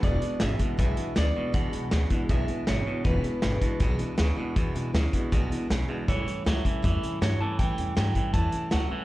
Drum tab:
HH |xxxxxxx-|xxxxxxx-|xxxxxxx-|xxxxxxx-|
SD |--o---o-|--o---o-|--o---o-|--o---o-|
BD |o--oo---|o--oo---|o--oo---|o--oo---|

HH |xxxxxxx-|xxxxxxx-|
SD |--o---o-|--o---o-|
BD |o--oo---|o--oo---|